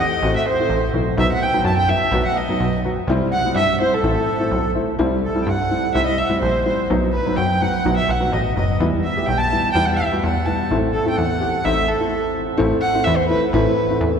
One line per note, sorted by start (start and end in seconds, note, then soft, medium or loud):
0.00 0.11 A3 medium
0.00 0.11 C4 medium
0.00 0.11 G4 medium
0.00 0.35 D#5 medium
0.00 0.35 D#5 loud
0.22 0.36 A1 loud
0.22 0.41 A3 medium
0.22 0.40 C4 medium
0.22 0.41 F#4 medium
0.34 0.46 E5 medium
0.46 0.90 C5 medium
0.46 0.91 C5 medium
0.60 0.77 A3 medium
0.60 0.76 C4 medium
0.60 0.77 E4 medium
0.69 0.91 A1 medium
0.94 1.15 B1 medium
0.94 1.06 A3 medium
0.94 1.06 C4 soft
0.94 1.06 E4 medium
1.17 1.32 B1 loud
1.17 1.36 F#3 medium
1.17 1.36 B3 medium
1.17 1.35 D#4 loud
1.17 1.39 E5 medium
1.17 1.29 E5 loud
1.32 1.45 F#5 loud
1.41 1.63 G5 medium
1.41 1.65 G5 loud
1.53 1.71 F#3 medium
1.53 1.71 B3 medium
1.53 1.71 D#4 medium
1.64 1.93 F#2 medium
1.64 1.75 A5 medium
1.64 1.76 A5 medium
1.76 1.89 G5 medium
1.76 1.91 G5 loud
1.88 2.00 F#3 medium
1.88 2.01 B3 soft
1.88 2.00 D#4 medium
1.88 2.25 E5 medium
2.12 2.26 B1 loud
2.12 2.31 F#3 medium
2.12 2.31 B3 medium
2.12 2.31 F#4 medium
2.24 2.36 F#5 medium
2.24 2.39 F#5 medium
2.35 2.80 D#5 medium
2.35 2.84 D#5 medium
2.48 2.66 F#3 medium
2.48 2.66 B3 medium
2.48 2.67 D#4 medium
2.60 2.89 B1 medium
2.85 2.97 F#3 medium
2.85 2.97 B3 soft
2.85 2.96 F#4 medium
3.07 3.22 C2 loud
3.07 3.26 G3 medium
3.07 3.26 C4 loud
3.07 3.27 E4 loud
3.31 3.56 F#5 medium
3.31 3.54 F#5 loud
3.45 3.62 G3 medium
3.45 3.62 C4 medium
3.45 3.62 E4 medium
3.55 3.84 G2 medium
3.55 3.80 E5 medium
3.55 3.78 E5 medium
3.80 3.92 G3 soft
3.80 3.92 C4 soft
3.80 3.92 E4 medium
3.80 3.92 C5 medium
3.80 3.95 C5 loud
3.92 4.71 A4 medium
3.92 4.76 A4 medium
4.03 4.18 A1 loud
4.03 4.21 A3 medium
4.03 4.21 C4 medium
4.03 4.21 E4 medium
4.39 4.57 A3 medium
4.39 4.57 C4 medium
4.39 4.57 E4 medium
4.51 4.80 B1 medium
4.75 4.87 A3 medium
4.75 4.87 C4 medium
4.75 4.87 E4 medium
4.99 5.28 C2 medium
4.99 5.17 G3 medium
4.99 5.17 C4 medium
4.99 5.17 E4 loud
5.24 5.41 A4 medium
5.24 5.50 A4 medium
5.35 5.53 G3 medium
5.35 5.53 C4 soft
5.35 5.53 E4 medium
5.42 5.48 G5 medium
5.47 5.75 G2 medium
5.47 5.94 F#5 medium
5.47 5.97 F#5 medium
5.71 5.83 G3 soft
5.71 5.82 C4 soft
5.71 5.82 E4 medium
5.94 6.23 C2 medium
5.94 6.12 G3 medium
5.94 6.12 C4 medium
5.94 6.13 E4 medium
5.94 6.05 E5 loud
5.94 6.17 E5 medium
6.06 6.20 D#5 medium
6.18 6.41 E5 medium
6.18 6.24 E5 medium
6.24 6.30 F#5 medium
6.29 6.47 G3 medium
6.29 6.47 C4 medium
6.29 6.47 E4 medium
6.29 6.43 E5 medium
6.41 6.71 A#1 medium
6.41 6.64 C5 medium
6.41 6.65 C5 medium
6.65 6.78 G3 medium
6.65 6.78 C4 soft
6.65 6.77 E4 medium
6.65 6.88 C5 medium
6.90 7.19 B1 loud
6.90 7.08 F#3 medium
6.90 7.08 B3 medium
6.90 7.08 D#4 medium
7.12 7.38 B4 medium
7.12 7.36 B4 medium
7.26 7.44 F#3 medium
7.26 7.44 B3 medium
7.26 7.44 D#4 medium
7.36 7.66 F#2 medium
7.36 7.63 G5 medium
7.36 7.62 G5 medium
7.61 7.73 F#3 medium
7.61 7.73 B3 medium
7.61 7.73 D#4 soft
7.61 7.96 F#5 loud
7.61 7.99 F#5 medium
7.85 8.00 B1 medium
7.85 8.03 F#3 medium
7.85 8.03 B3 medium
7.85 8.03 D#4 medium
7.97 8.12 E5 medium
7.97 8.10 E5 medium
8.09 8.30 B1 medium
8.09 8.31 F#5 medium
8.09 8.34 F#5 medium
8.20 8.38 F#3 medium
8.20 8.38 B3 medium
8.20 8.38 F#4 medium
8.31 8.54 A1 medium
8.31 8.53 D#5 medium
8.31 8.56 D#5 medium
8.54 8.78 F#1 medium
8.54 8.68 F#3 soft
8.54 8.68 B3 soft
8.54 8.68 F#4 medium
8.54 8.77 D#5 medium
8.54 8.78 D#5 medium
8.80 9.08 E2 loud
8.80 8.99 G3 medium
8.80 8.98 B3 medium
8.80 8.98 E4 medium
9.03 9.27 E5 medium
9.03 9.28 E5 medium
9.16 9.34 G3 medium
9.16 9.34 B3 medium
9.16 9.34 G4 medium
9.26 9.56 B1 medium
9.26 9.39 G5 loud
9.26 9.40 G5 medium
9.38 9.72 A5 loud
9.38 9.76 A5 medium
9.52 9.63 G3 soft
9.52 9.63 B3 soft
9.52 9.63 E4 medium
9.73 10.03 E2 medium
9.73 9.93 G3 medium
9.73 9.93 B3 medium
9.73 9.93 E4 medium
9.73 9.87 G5 loud
9.73 9.97 G5 medium
9.85 9.96 F#5 loud
9.96 10.19 E5 medium
9.96 10.23 E5 medium
10.12 10.29 G3 medium
10.12 10.29 B3 soft
10.12 10.29 F#4 medium
10.21 10.52 E2 medium
10.21 10.66 F#5 medium
10.21 10.47 F#5 medium
10.46 10.58 G3 medium
10.46 10.58 B3 soft
10.46 10.58 E4 medium
10.46 10.69 A5 medium
10.71 10.99 A1 medium
10.71 10.88 A3 medium
10.71 10.88 C4 medium
10.71 10.88 E4 medium
10.93 11.09 A4 medium
10.93 11.18 A4 medium
11.05 11.23 A3 medium
11.05 11.23 C4 medium
11.05 11.23 E4 medium
11.05 11.18 G5 medium
11.16 11.46 E2 medium
11.16 11.66 F#5 medium
11.16 11.57 F#5 medium
11.41 11.53 A3 medium
11.41 11.52 C4 soft
11.41 11.53 G4 medium
11.59 11.64 F#5 medium
11.64 11.93 A1 loud
11.64 11.83 A3 medium
11.64 11.83 C4 medium
11.64 11.82 D#4 medium
11.64 11.89 E5 medium
11.64 11.90 E5 loud
11.88 12.35 A4 medium
11.88 12.32 A4 medium
12.00 12.12 A3 medium
12.00 12.12 C4 medium
12.00 12.12 E4 medium
12.57 12.73 A1 loud
12.57 12.76 A3 loud
12.57 12.76 C4 medium
12.57 12.76 E4 loud
12.81 13.05 F#5 loud
12.95 13.12 A3 medium
12.95 13.12 C4 medium
12.95 13.12 E4 medium
13.04 13.35 E2 loud
13.04 13.17 E5 medium
13.16 13.28 C5 loud
13.28 13.41 A3 medium
13.28 13.41 C4 soft
13.28 13.41 E4 medium
13.28 13.51 B4 loud
13.52 13.67 A1 loud
13.52 13.71 A3 medium
13.52 13.71 C4 medium
13.52 13.71 E4 loud
13.52 14.19 B4 medium
13.90 14.07 A3 medium
13.90 14.07 C4 medium
13.90 14.07 E4 medium
14.01 14.20 E2 medium